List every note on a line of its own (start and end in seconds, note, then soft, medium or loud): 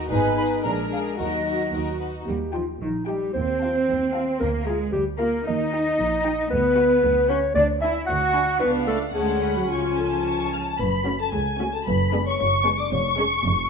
0.09 0.55 G#1 medium
0.09 0.55 G#2 medium
0.09 0.63 B3 medium
0.09 0.36 D#4 medium
0.09 0.63 D#4 medium
0.09 0.36 G#4 medium
0.09 0.35 B4 medium
0.09 0.63 B4 medium
0.09 0.36 G#5 medium
0.36 0.63 D#4 soft
0.36 0.62 G#4 soft
0.36 0.63 B4 soft
0.36 0.43 B5 medium
0.64 1.10 A#1 medium
0.64 1.10 A#2 medium
0.64 1.19 G#3 soft
0.64 0.89 D4 soft
0.64 1.19 D4 soft
0.64 0.88 G#4 soft
0.64 0.90 A#4 soft
0.64 1.18 A#4 medium
0.64 0.70 A#5 medium
0.89 1.17 D4 soft
0.89 1.17 G#4 soft
0.89 1.18 A#4 soft
0.89 0.99 F5 medium
1.18 1.64 D#2 medium
1.18 1.64 D#3 medium
1.18 2.00 F#3 soft
1.18 1.45 D#4 soft
1.18 2.00 D#4 soft
1.18 1.45 F#4 soft
1.18 1.98 F#4 soft
1.18 1.44 A#4 soft
1.18 1.72 D#5 medium
1.45 1.72 D#4 soft
1.45 1.71 F#4 soft
1.45 1.71 A#4 soft
1.72 2.18 D#2 soft
1.72 2.18 D#3 soft
1.72 1.98 D#4 soft
1.72 1.99 F#4 soft
1.72 1.98 A#4 soft
2.00 2.26 D#4 soft
2.00 2.26 F#4 soft
2.00 2.08 B4 soft
2.27 2.69 D#2 medium
2.27 2.36 G3 soft
2.27 2.52 G4 medium
2.53 2.63 F3 soft
2.53 2.74 D#4 soft
2.53 2.66 F4 medium
2.53 2.73 G5 soft
2.80 3.23 A#1 medium
2.80 2.89 D#3 soft
2.80 3.06 D#4 medium
3.07 3.34 G3 medium
3.07 3.28 D#4 soft
3.07 3.33 G4 medium
3.07 3.27 G5 soft
3.07 3.28 G5 soft
3.34 3.77 D#2 medium
3.34 4.39 C4 medium
3.34 4.38 C5 medium
3.61 3.81 F4 soft
3.61 3.81 F5 soft
3.61 3.81 A5 soft
3.88 4.30 D#2 medium
4.14 4.34 F4 medium
4.14 4.34 F5 medium
4.14 4.33 A5 medium
4.40 4.82 D2 medium
4.40 4.66 A#3 medium
4.40 4.52 A#4 medium
4.66 4.93 G#3 medium
4.66 4.86 F4 soft
4.66 4.78 G#4 medium
4.66 4.86 F5 medium
4.66 4.86 A#5 medium
4.92 5.35 D2 medium
4.92 5.00 G3 medium
4.92 5.05 G4 medium
5.18 5.46 A#3 medium
5.18 5.40 F4 medium
5.18 5.45 A#4 medium
5.18 5.39 F5 medium
5.18 5.39 A#5 medium
5.46 5.88 D#2 medium
5.46 6.48 D#4 medium
5.46 6.49 D#5 medium
5.73 5.92 D#4 medium
5.73 5.92 G5 medium
5.73 5.92 A#5 medium
5.99 6.40 A#1 medium
6.25 6.44 D#4 medium
6.25 6.44 G5 medium
6.25 6.44 A#5 medium
6.50 6.92 D2 medium
6.50 7.28 B3 medium
6.50 7.31 B4 medium
6.77 6.97 F#4 medium
6.77 6.97 F#5 medium
6.77 6.97 B5 medium
7.03 7.45 D2 medium
7.29 7.38 C#4 medium
7.29 7.49 F#4 medium
7.29 7.54 C#5 medium
7.29 7.49 F#5 medium
7.29 7.49 B5 medium
7.55 7.97 D2 medium
7.55 7.64 D4 medium
7.55 7.67 D5 medium
7.81 8.02 D4 medium
7.81 8.07 E4 medium
7.81 7.93 E5 medium
7.81 8.01 G#5 medium
7.81 8.02 B5 medium
8.07 8.50 D2 medium
8.07 8.59 F#4 medium
8.07 8.59 F#5 medium
8.34 8.54 D4 medium
8.34 8.54 G#5 medium
8.34 8.54 B5 medium
8.60 9.11 C#2 medium
8.60 8.87 B3 medium
8.60 9.11 D4 medium
8.60 8.72 B4 medium
8.60 9.10 F5 medium
8.60 8.69 C#6 medium
8.87 8.95 A3 medium
8.87 8.99 A4 medium
8.87 8.96 B5 soft
9.14 9.70 D2 medium
9.14 9.54 G#3 medium
9.14 9.69 C#4 medium
9.14 9.54 G#4 medium
9.14 9.69 F#5 medium
9.14 9.41 A5 soft
9.42 9.69 B5 soft
9.55 9.61 F#3 soft
9.55 9.70 F#4 medium
9.69 10.58 C#2 medium
9.69 10.51 F3 medium
9.69 10.58 C#4 medium
9.69 10.53 F4 medium
9.69 10.60 G#5 soft
9.69 9.97 C#6 soft
9.98 10.76 A4 medium
9.98 10.76 A5 medium
10.25 10.51 C#6 soft
10.53 10.61 F6 medium
10.79 11.22 F#1 medium
10.79 11.22 F#2 medium
10.79 11.17 B4 medium
10.79 11.20 B5 medium
11.05 11.27 A3 medium
11.05 11.26 C#4 medium
11.05 11.27 C#4 medium
11.05 11.26 F#4 medium
11.20 11.33 A4 medium
11.20 11.34 A5 medium
11.33 11.75 C#2 medium
11.33 11.76 C#2 medium
11.33 11.71 G#4 medium
11.33 11.73 G#5 medium
11.59 11.80 A3 medium
11.59 11.80 C#4 medium
11.59 11.79 F#4 medium
11.73 11.86 A4 medium
11.73 11.87 A5 medium
11.86 12.29 F#1 medium
11.86 12.28 F#2 medium
11.86 12.24 B4 medium
11.86 12.26 B5 medium
12.13 12.33 G#3 medium
12.13 12.33 B3 medium
12.13 12.33 D4 medium
12.13 12.33 G#4 medium
12.26 12.38 C#5 medium
12.26 12.38 C#6 medium
12.39 12.81 F#1 medium
12.39 12.81 F#2 medium
12.39 12.76 C#5 medium
12.39 12.78 C#6 medium
12.64 12.85 G#3 medium
12.64 12.85 B3 medium
12.64 12.85 D4 medium
12.64 12.85 G#4 medium
12.80 12.92 D5 medium
12.80 12.93 D6 medium
12.91 13.34 F1 medium
12.91 13.34 F2 medium
12.91 13.67 C#5 medium
12.91 13.69 C#6 loud
13.18 13.38 G#3 medium
13.18 13.38 C#4 medium
13.18 13.38 G#4 medium
13.45 13.70 F1 medium
13.45 13.70 F2 medium